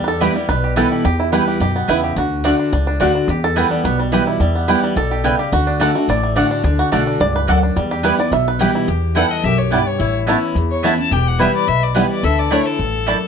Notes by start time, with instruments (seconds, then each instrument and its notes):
Already playing: upright bass E2, steel-string acoustic guitar E2, five-string banjo G3
0.04 five-string banjo A4 B4
0.20 steel-string acoustic guitar E3 G3 B3 E4, mandolin B3 E4 B4 G5, five-string banjo G4
0.36 five-string banjo G3, steel-string acoustic guitar B3 E4
0.49 upright bass B1, steel-string acoustic guitar B2, five-string banjo B4
0.64 five-string banjo G4
0.76 steel-string acoustic guitar E3 G3 B3 E4, mandolin B3 E4 B4 G5, five-string banjo A4
0.92 five-string banjo G4
1.05 upright bass E2, steel-string acoustic guitar E2, five-string banjo G4
1.20 five-string banjo E4
1.32 steel-string acoustic guitar E3 G3 B3 E4, mandolin B3 E4 B4 G5, five-string banjo B4
1.48 five-string banjo G4
1.60 upright bass F#2, steel-string acoustic guitar B2, five-string banjo G4
1.76 five-string banjo B3
1.88 upright bass E2, steel-string acoustic guitar C#3, mandolin B3 E4 B4 G5, five-string banjo E4
2.04 five-string banjo G4
2.16 upright bass D2, steel-string acoustic guitar D3, five-string banjo F#4
2.44 steel-string acoustic guitar D3 A3 D4 F#4, mandolin A3 F#4 D5 F#5, five-string banjo D4
2.59 five-string banjo D4
2.72 upright bass C#2, steel-string acoustic guitar A2, five-string banjo D4
2.87 five-string banjo D4
3.00 upright bass D2, steel-string acoustic guitar D3 A3 D4 F#4, mandolin A3 F#4 D5 F#5, five-string banjo D4
3.15 five-string banjo D4
3.28 upright bass E2, steel-string acoustic guitar E2, five-string banjo G4
3.44 five-string banjo A4
3.56 steel-string acoustic guitar E3 G3 B3 E4, mandolin B3 E4 B4 G5, five-string banjo B3
3.71 five-string banjo G3
3.84 upright bass B1, steel-string acoustic guitar B2, five-string banjo B4
3.99 five-string banjo G3
4.12 steel-string acoustic guitar E3 G3 B3 E4, mandolin B3 E4 B4 G5, five-string banjo G4
4.27 five-string banjo E4
4.40 upright bass E2, steel-string acoustic guitar E2, five-string banjo G3
4.55 five-string banjo B3
4.68 steel-string acoustic guitar E3 G3 B3 E4, mandolin B3 E4 B4 G5, five-string banjo B4
4.83 five-string banjo G3
4.96 upright bass B1, steel-string acoustic guitar B2, five-string banjo A4
5.11 five-string banjo G4
5.24 steel-string acoustic guitar C#3, five-string banjo G3, mandolin B3 E4 B4 G5
5.39 five-string banjo G4
5.52 upright bass D2, steel-string acoustic guitar D3, five-string banjo F#4
5.67 five-string banjo D4
5.80 steel-string acoustic guitar D3 A3 D4 F#4, mandolin A3 F#4 D5 F#5, five-string banjo A4
5.95 five-string banjo A3, steel-string acoustic guitar D4 F#4
6.08 upright bass A1, steel-string acoustic guitar A2, five-string banjo D5
6.23 five-string banjo A3
6.36 steel-string acoustic guitar D3 A3 D4 F#4, mandolin A3 F#4 D5 F#5, five-string banjo D4
6.51 five-string banjo D4
6.64 upright bass D2, steel-string acoustic guitar D3, five-string banjo D4
6.79 five-string banjo F#4
6.92 upright bass B1, steel-string acoustic guitar D3 A3 D4 F#4, mandolin A3 F#4 D5 F#5, five-string banjo A4
7.07 five-string banjo D4
7.20 upright bass C#2, steel-string acoustic guitar G2, five-string banjo D5
7.36 five-string banjo B4
7.48 upright bass D2, steel-string acoustic guitar F#2, mandolin A3 F#4 D5 F#5, five-string banjo A4
7.63 five-string banjo D4
7.76 upright bass E2, steel-string acoustic guitar E2, five-string banjo G3
7.91 five-string banjo G4
8.03 steel-string acoustic guitar E3 G3 B3 E4, mandolin B3 E4 B4 G5, five-string banjo B4
8.19 steel-string acoustic guitar B3 E4, five-string banjo D5
8.31 upright bass B1, steel-string acoustic guitar B2, five-string banjo E5
8.48 five-string banjo B4
8.59 steel-string acoustic guitar E3 G3 B3 E4, mandolin B3 E4 B4 G5, five-string banjo G4
8.75 five-string banjo E4
8.88 steel-string acoustic guitar E2, upright bass E2, resonator guitar played with a steel bar G4
9.15 steel-string acoustic guitar E3 G3 B3 E4, five-string banjo G3 B3 E4, mandolin B3 E4 B4 G5, resonator guitar played with a steel bar A4, fiddle F#5
9.31 fiddle D#5
9.43 upright bass B1, steel-string acoustic guitar F#2, resonator guitar played with a steel bar G4, fiddle E5
9.58 fiddle C#5
9.71 steel-string acoustic guitar G2, five-string banjo G3 B3 E4, mandolin B3 E4 B4 G5, fiddle D5
9.87 fiddle C#5
9.99 upright bass A1, steel-string acoustic guitar A2, resonator guitar played with a steel bar E4
10.27 steel-string acoustic guitar E3 B3 C#4 E4, five-string banjo A3 B3 E4, mandolin B3 E4 C#5 A5, resonator guitar played with a steel bar E4
10.55 upright bass E2, steel-string acoustic guitar E2
10.71 fiddle C#5
10.83 steel-string acoustic guitar E3 B3 C#4 E4, five-string banjo A3 B3 E4, mandolin B3 E4 C#5 A5, fiddle E5
10.98 steel-string acoustic guitar C#4 E4, fiddle A5
11.11 upright bass E1, steel-string acoustic guitar E2, resonator guitar played with a steel bar G4, fiddle G5
11.27 fiddle F#5
11.39 steel-string acoustic guitar E3 G3 B3 E4, five-string banjo G3 B3 E4, mandolin B3 E4 B4 G5, resonator guitar played with a steel bar B4, fiddle E5
11.55 fiddle D5
11.67 upright bass B1, steel-string acoustic guitar B2, fiddle E5
11.83 fiddle D5
11.95 steel-string acoustic guitar E3 G3 B3 E4, five-string banjo G3 B3 E4, mandolin B3 E4 B4 G5, fiddle B4
12.11 fiddle D5
12.23 upright bass D2, steel-string acoustic guitar D3, resonator guitar played with a steel bar A4, fiddle E5
12.39 fiddle D5
12.50 steel-string acoustic guitar D3 A3 D4 E4, mandolin A3 E4 D5 A5, five-string banjo A3 D4, fiddle C#5
12.66 fiddle A4
12.79 upright bass A1, steel-string acoustic guitar G2
13.06 steel-string acoustic guitar F#2, mandolin A3 E4 D5 A5, five-string banjo A3 D4